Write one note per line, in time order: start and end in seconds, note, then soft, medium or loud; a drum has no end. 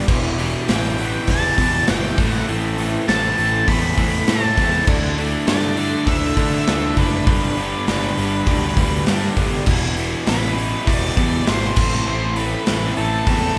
0.08 0.55 E1 medium
0.08 0.36 E2 loud
0.08 0.37 B2 loud
0.08 0.38 E3 loud
0.08 0.38 G3 loud
0.08 2.17 E4 medium
0.08 0.39 E4 loud
0.08 2.17 G4 medium
0.08 0.39 G4 loud
0.08 2.16 B4 medium
0.08 kick loud
0.08 crash loud
0.38 0.67 E2 medium
0.38 0.67 B2 medium
0.38 0.69 E3 medium
0.38 0.68 G3 medium
0.38 0.69 E4 medium
0.38 0.69 G4 medium
0.38 open hi-hat medium
0.68 1.15 A1 medium
0.68 0.97 E2 medium
0.68 0.97 B2 medium
0.68 0.98 E3 medium
0.68 0.98 G3 medium
0.68 0.99 E4 medium
0.68 0.98 G4 medium
0.68 1.30 G5 medium
0.68 snare loud
0.68 open hi-hat medium
0.98 1.26 E2 medium
0.98 1.26 B2 medium
0.98 1.28 E3 medium
0.98 1.27 G3 medium
0.98 1.28 E4 loud
0.98 1.28 G4 loud
0.98 open hi-hat medium
1.27 1.52 E1 loud
1.27 1.56 E2 loud
1.27 1.57 B2 loud
1.27 1.58 E3 loud
1.27 1.57 G3 medium
1.27 1.59 E4 loud
1.27 1.59 G4 medium
1.27 1.89 A5 loud
1.27 kick medium
1.27 open hi-hat loud
1.44 snare soft
1.57 1.86 E2 medium
1.57 1.81 E2 loud
1.57 1.87 B2 medium
1.57 1.88 E3 medium
1.57 1.87 G3 loud
1.57 1.89 E4 medium
1.57 1.88 G4 loud
1.57 kick medium
1.57 open hi-hat medium
1.87 2.12 G1 loud
1.87 2.16 E2 loud
1.87 2.16 B2 medium
1.87 2.17 E3 loud
1.87 2.17 G3 loud
1.87 2.18 E4 medium
1.87 2.17 G4 medium
1.87 2.30 G5 medium
1.87 snare loud
1.87 open hi-hat medium
2.17 2.42 A1 loud
2.17 2.46 A2 loud
2.17 2.47 E3 medium
2.17 2.48 A3 loud
2.17 2.47 C4 loud
2.17 2.48 E4 loud
2.17 4.86 E4 medium
2.17 2.48 A4 medium
2.17 4.86 A4 medium
2.17 4.86 C5 medium
2.17 kick loud
2.17 snare soft
2.17 open hi-hat medium
2.30 2.45 F#5 medium
2.47 2.95 A1 loud
2.47 2.76 A2 loud
2.47 2.77 E3 loud
2.47 2.78 A3 loud
2.47 2.77 C4 loud
2.47 2.78 E4 loud
2.47 2.79 A4 loud
2.47 open hi-hat medium
2.77 3.05 A2 medium
2.77 3.07 E3 medium
2.77 3.07 A3 loud
2.77 3.06 C4 medium
2.77 3.07 E4 medium
2.77 3.08 A4 medium
2.77 open hi-hat medium
3.06 3.32 A1 medium
3.06 3.36 A2 medium
3.06 3.37 E3 medium
3.06 3.37 A3 loud
3.06 3.37 C4 medium
3.06 3.38 E4 medium
3.06 3.38 A4 loud
3.06 3.70 A5 loud
3.06 snare loud
3.06 open hi-hat medium
3.37 3.62 A1 medium
3.37 3.65 A2 medium
3.37 3.66 E3 medium
3.37 3.67 A3 medium
3.37 3.67 C4 medium
3.37 3.67 E4 loud
3.37 3.67 A4 medium
3.37 open hi-hat medium
3.67 3.91 E2 medium
3.67 3.96 A2 medium
3.67 3.97 E3 medium
3.67 3.96 A3 loud
3.67 3.97 C4 medium
3.67 3.98 E4 medium
3.67 3.98 A4 medium
3.67 4.30 B5 loud
3.67 kick medium
3.67 open hi-hat medium
3.98 4.21 E2 medium
3.98 4.27 A2 medium
3.98 4.27 E3 medium
3.98 4.27 A3 loud
3.98 4.27 C4 medium
3.98 4.28 E4 loud
3.98 4.28 A4 medium
3.98 kick medium
3.98 open hi-hat medium
4.27 4.56 A2 loud
4.27 4.51 A2 loud
4.27 4.57 E3 loud
4.27 4.56 A3 medium
4.27 4.57 C4 loud
4.27 4.58 E4 loud
4.27 4.58 A4 loud
4.27 4.85 A5 medium
4.27 snare loud
4.27 open hi-hat medium
4.57 4.81 E2 loud
4.57 4.86 A2 medium
4.57 4.86 E3 medium
4.57 4.86 A3 loud
4.57 4.86 C4 medium
4.57 4.87 E4 medium
4.57 4.87 A4 medium
4.57 kick medium
4.57 snare soft
4.57 open hi-hat medium
4.87 5.34 D2 medium
4.87 5.17 D3 loud
4.87 5.17 A3 loud
4.87 5.17 D4 loud
4.87 7.25 E4 medium
4.87 5.18 E4 loud
4.87 7.25 A4 medium
4.87 5.18 A4 loud
4.87 7.26 D5 medium
4.87 kick loud
4.87 crash loud
5.18 5.46 D3 medium
5.18 5.46 A3 medium
5.18 5.47 D4 loud
5.18 5.47 E4 medium
5.18 5.47 A4 loud
5.18 open hi-hat medium
5.47 5.94 G2 medium
5.47 5.75 D3 medium
5.47 5.76 A3 medium
5.47 5.77 D4 loud
5.47 5.76 E4 medium
5.47 5.77 A4 loud
5.47 6.04 D5 loud
5.47 snare loud
5.47 open hi-hat medium
5.77 6.05 D3 medium
5.77 6.06 A3 loud
5.77 6.06 D4 loud
5.77 6.07 E4 loud
5.77 6.07 A4 loud
5.77 open hi-hat medium
6.06 6.30 D2 medium
6.06 6.36 D3 medium
6.06 6.37 A3 loud
6.06 6.37 D4 loud
6.06 6.37 E4 medium
6.06 6.37 A4 medium
6.06 6.53 E5 loud
6.06 kick medium
6.06 open hi-hat medium
6.37 6.61 D3 medium
6.37 6.66 D3 medium
6.37 6.66 A3 medium
6.37 6.67 D4 loud
6.37 6.67 E4 loud
6.37 6.68 A4 loud
6.37 kick medium
6.37 open hi-hat medium
6.54 7.00 E5 loud
6.67 6.91 D2 medium
6.67 6.96 D3 loud
6.67 6.96 A3 loud
6.67 6.97 D4 medium
6.67 6.97 E4 medium
6.67 6.97 A4 loud
6.67 snare loud
6.67 open hi-hat medium
6.97 7.21 F#1 medium
6.97 7.26 D3 medium
6.97 7.26 A3 loud
6.97 7.26 D4 medium
6.97 7.26 E4 medium
6.97 7.26 A4 medium
6.97 9.04 B4 medium
6.97 kick medium
6.97 snare soft
6.97 open hi-hat medium
7.26 7.74 G1 medium
7.26 7.55 G2 loud
7.26 7.55 D3 medium
7.26 7.56 G3 loud
7.26 7.56 B3 loud
7.26 7.56 D4 loud
7.26 9.65 G4 medium
7.26 7.57 G4 loud
7.26 9.65 B4 medium
7.26 9.65 D5 medium
7.26 kick loud
7.26 open hi-hat medium
7.56 7.85 G2 medium
7.56 7.85 D3 medium
7.56 7.86 G3 medium
7.56 7.86 B3 medium
7.56 7.87 D4 medium
7.56 7.87 G4 medium
7.56 open hi-hat medium
7.86 8.11 G1 medium
7.86 8.15 G2 loud
7.86 8.16 D3 medium
7.86 8.16 G3 medium
7.86 8.17 B3 medium
7.86 8.17 D4 loud
7.86 8.17 G4 loud
7.86 snare loud
7.86 open hi-hat medium
8.16 8.41 G1 medium
8.16 8.45 G2 medium
8.16 8.46 D3 medium
8.16 8.46 G3 medium
8.16 8.46 B3 medium
8.16 8.46 D4 medium
8.16 8.47 G4 medium
8.16 open hi-hat medium
8.46 8.70 D2 medium
8.46 8.75 G2 loud
8.46 8.75 D3 medium
8.46 8.76 G3 medium
8.46 8.76 B3 loud
8.46 8.77 D4 medium
8.46 8.77 G4 loud
8.46 kick medium
8.46 open hi-hat medium
8.76 9.00 D2 medium
8.76 9.05 G2 medium
8.76 9.05 D3 medium
8.76 9.06 G3 medium
8.76 9.06 B3 loud
8.76 9.07 D4 medium
8.76 9.08 G4 medium
8.76 kick medium
8.76 open hi-hat medium
9.06 9.35 G2 medium
9.06 9.31 G2 loud
9.06 9.36 D3 loud
9.06 9.36 G3 loud
9.06 9.36 B3 medium
9.06 9.37 D4 loud
9.06 9.37 G4 loud
9.06 snare loud
9.06 open hi-hat medium
9.36 9.60 G1 loud
9.36 9.65 G2 medium
9.36 9.65 D3 medium
9.36 9.65 G3 loud
9.36 9.66 B3 medium
9.36 9.66 D4 loud
9.36 9.66 G4 medium
9.36 kick medium
9.36 open hi-hat medium
9.66 10.14 E1 loud
9.66 9.96 E2 loud
9.66 9.97 B2 loud
9.66 9.98 E3 loud
9.66 9.98 G3 loud
9.66 9.98 B3 loud
9.66 11.75 E4 medium
9.66 9.99 E4 loud
9.66 11.75 G4 medium
9.66 11.75 B5 medium
9.66 kick loud
9.66 crash loud
9.97 10.26 E2 medium
9.97 10.27 B2 medium
9.97 10.28 E3 medium
9.97 10.27 G3 medium
9.97 10.28 B3 medium
9.97 10.29 E4 medium
9.97 open hi-hat medium
10.27 10.74 A1 loud
10.27 10.56 E2 medium
10.27 10.57 B2 medium
10.27 10.58 E3 medium
10.27 10.58 G3 medium
10.27 10.58 B3 medium
10.27 10.59 E4 medium
10.27 10.90 B4 loud
10.27 snare loud
10.27 open hi-hat medium
10.57 10.86 E2 medium
10.57 10.86 B2 medium
10.57 10.88 E3 medium
10.57 10.87 G3 medium
10.57 10.87 B3 medium
10.57 10.89 E4 medium
10.57 open hi-hat medium
10.87 11.11 E1 loud
10.87 11.16 E2 medium
10.87 11.16 B2 medium
10.87 11.18 E3 medium
10.87 11.17 G3 medium
10.87 11.18 B3 loud
10.87 11.19 E4 loud
10.87 11.43 D5 loud
10.87 kick medium
10.87 open hi-hat loud
11.17 11.40 E2 medium
11.17 11.45 E2 medium
11.17 11.46 B2 medium
11.17 11.47 E3 medium
11.17 11.47 G3 loud
11.17 11.47 B3 medium
11.17 11.48 E4 loud
11.17 kick medium
11.17 open hi-hat medium
11.47 11.71 G#1 loud
11.47 11.75 E2 medium
11.47 11.75 B2 loud
11.47 11.77 E3 loud
11.47 11.76 G3 loud
11.47 11.76 B3 loud
11.47 11.78 E4 loud
11.47 12.06 C5 loud
11.47 snare loud
11.47 open hi-hat medium
11.76 12.00 A1 medium
11.76 12.06 A2 medium
11.76 12.07 E3 loud
11.76 12.08 A3 loud
11.76 13.58 C4 medium
11.76 12.07 C4 loud
11.76 13.58 E4 medium
11.76 12.09 E4 loud
11.76 13.58 A4 medium
11.76 kick loud
11.76 crash loud
12.07 12.54 A1 medium
12.07 12.35 A2 medium
12.07 12.37 E3 loud
12.07 12.38 A3 loud
12.07 12.37 C4 loud
12.07 12.38 E4 loud
12.07 12.36 C5 loud
12.36 12.66 A2 medium
12.36 12.67 E3 medium
12.36 12.68 A3 medium
12.36 12.68 C4 medium
12.36 12.68 E4 loud
12.36 12.97 B4 medium
12.36 open hi-hat medium
12.66 12.91 A1 loud
12.66 12.96 A2 medium
12.66 12.97 E3 loud
12.66 12.98 A3 medium
12.66 12.97 C4 loud
12.66 12.98 E4 loud
12.66 snare loud
12.66 open hi-hat medium
12.96 13.21 A1 medium
12.96 13.27 A2 medium
12.96 13.27 E3 medium
12.96 13.28 A3 medium
12.96 13.28 C4 medium
12.96 13.28 E4 medium
12.96 13.58 A4 medium
12.96 open hi-hat medium
13.27 13.50 E2 medium
13.27 13.55 A2 medium
13.27 13.57 E3 medium
13.27 13.57 A3 loud
13.27 13.57 C4 medium
13.27 13.58 E4 loud
13.27 kick medium
13.27 open hi-hat medium